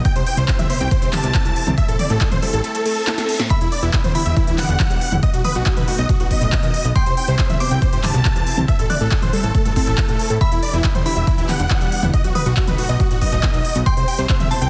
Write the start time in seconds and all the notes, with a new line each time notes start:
0.05 C3 C4 E4 G4 G5, kick, closed hi-hat
0.16 C2 C5, closed hi-hat
0.27 G5, open hi-hat
0.37 C2 C3 C5, closed hi-hat
0.48 C5, kick, clap, closed hi-hat
0.59 C2 E5, closed hi-hat, mid tom
0.70 B2 C5, open hi-hat
0.80 C2 C4 G5, closed hi-hat
0.91 C3 C5, kick, closed hi-hat
1.02 G1 C3 C5, closed hi-hat
1.13 G2 A5, clap, open hi-hat, mid tom
1.23 C2 B2, closed hi-hat
1.34 C3, kick, clap, closed hi-hat
1.45 C2 E3, closed hi-hat
1.56 open hi-hat
1.67 C2 C4, closed hi-hat, mid tom
1.77 A3 E5, kick, closed hi-hat
1.88 A1 A4, closed hi-hat
1.99 D5, open hi-hat, mid tom
2.10 A1 A3 A4, closed hi-hat
2.21 A4, kick, clap, closed hi-hat
2.31 A1 C5, closed hi-hat, mid tom
2.42 G3 A4, open hi-hat
2.53 A1 A4, closed hi-hat
2.64 A3 A4, closed hi-hat, reverse cymbal
2.75 A3 A4, closed hi-hat
2.85 A3 A4, open hi-hat
2.96 A4, open hi-hat
3.07 E4, snare, clap, closed hi-hat
3.18 C4, snare, closed hi-hat
3.29 open hi-hat
3.40 A2, snare
3.50 E3 B3 D4 G4 E5 B5, kick, closed hi-hat
3.61 E1 E4, closed hi-hat
3.72 D5, open hi-hat
3.83 E1 E3 E4, closed hi-hat
3.93 E4, kick, clap, closed hi-hat
4.04 E1 C5, closed hi-hat, mid tom
4.15 D3 E4 B5, open hi-hat
4.26 E1 E4 E5, closed hi-hat
4.36 E3 E4, kick, closed hi-hat
4.47 D1 E3 E4, closed hi-hat
4.58 B2 F#5, clap, open hi-hat, mid tom
4.69 E1 D3, closed hi-hat
4.80 E3, kick, clap, closed hi-hat
4.90 E1 G3, closed hi-hat
5.01 open hi-hat
5.12 E1 E4, closed hi-hat, mid tom
5.23 B3 D#4 F#4 D#5, kick, closed hi-hat
5.34 B1 F#4, closed hi-hat
5.44 B4 D#6, open hi-hat, mid tom
5.55 B1 B2 F#4, closed hi-hat
5.66 F#4, kick, clap, closed hi-hat
5.77 B1 B4, closed hi-hat, mid tom
5.88 A2 F#4, open hi-hat
5.98 B1 B3 D#5, closed hi-hat
6.09 B2 F#4, kick, closed hi-hat
6.20 A1 B2 F#4, closed hi-hat
6.31 F#2 D#5, kick, open hi-hat
6.42 B1 A2, closed hi-hat
6.52 B2, kick, clap, closed hi-hat
6.63 B1 D#3, closed hi-hat
6.74 open hi-hat
6.85 B1 B3, closed hi-hat
6.96 C3 C4 E4 G4 G5 C6, kick, closed hi-hat
7.06 C2 C5, closed hi-hat
7.17 G5, open hi-hat
7.28 C2 C3 C5, closed hi-hat
7.39 C5, kick, clap, closed hi-hat
7.50 C2 E5, closed hi-hat, mid tom
7.60 B2 C5 D6, open hi-hat
7.71 C2 C4 G5, closed hi-hat
7.82 C3 C5, kick, closed hi-hat
7.93 G1 C3 C5, closed hi-hat
8.03 G2 A5, clap, open hi-hat, mid tom
8.14 C2 B2, closed hi-hat
8.25 C3, kick, clap, closed hi-hat
8.36 C2 E3, closed hi-hat
8.47 open hi-hat
8.58 C2 C4, closed hi-hat, mid tom
8.68 A3 E5, kick, closed hi-hat
8.79 A1 A4, closed hi-hat
8.90 D5 F#6, open hi-hat, mid tom
9.01 A1 A3 A4, closed hi-hat
9.11 A4, kick, clap, closed hi-hat
9.22 A1 C5, closed hi-hat, mid tom
9.33 G3 A4, open hi-hat
9.44 A1 A4, closed hi-hat
9.55 A3 A4, kick, closed hi-hat
9.65 G1 A3 A4, closed hi-hat
9.76 C4 A4, kick, open hi-hat
9.87 A1 E4, closed hi-hat
9.98 A3, kick, clap, closed hi-hat
10.09 A1 A3, closed hi-hat
10.19 open hi-hat
10.30 A2 A4, closed hi-hat
10.41 E3 B3 D4 G4 E5 B5, kick, closed hi-hat
10.52 E1 E4, closed hi-hat
10.63 D5, open hi-hat
10.73 E1 E3 E4, closed hi-hat
10.84 E4, kick, clap, closed hi-hat
10.95 E1 C5, closed hi-hat, mid tom
11.06 D3 E4 B5, open hi-hat
11.16 E1 E4 E5, closed hi-hat
11.27 E3 E4, kick, closed hi-hat
11.38 D1 E3 E4, closed hi-hat
11.49 B2 F#5, clap, open hi-hat, mid tom
11.60 E1 D3, closed hi-hat
11.70 E3, kick, clap, closed hi-hat
11.81 E1 G3, closed hi-hat
11.92 open hi-hat
12.03 E1 E4, closed hi-hat, mid tom
12.14 D#4 F#4 D#5, kick, closed hi-hat
12.24 B1 F#4, closed hi-hat
12.35 B4 D#6, open hi-hat, mid tom
12.46 B1 B2 F#4, closed hi-hat
12.57 F#4, kick, clap, closed hi-hat
12.67 B1 B4, closed hi-hat, mid tom
12.78 A2 F#4, open hi-hat
12.89 B1 B3 D#5, closed hi-hat
13.00 B2 F#4, kick, closed hi-hat
13.11 A1 B2 F#4, closed hi-hat
13.21 F#2 D#5, kick, open hi-hat
13.32 B1 A2, closed hi-hat
13.43 B2, kick, clap, closed hi-hat
13.54 B1 D#3, closed hi-hat
13.65 open hi-hat
13.75 B1 B3, closed hi-hat
13.86 C3 C4 E4 G4 G5 C6, kick, closed hi-hat
13.97 C2 C5, closed hi-hat
14.08 G5, open hi-hat
14.18 C2 C3 C5, closed hi-hat
14.29 C5, kick, clap, closed hi-hat
14.40 C2 E5, closed hi-hat, mid tom
14.51 B2 C5 A5, open hi-hat
14.61 C2 C4 G5, closed hi-hat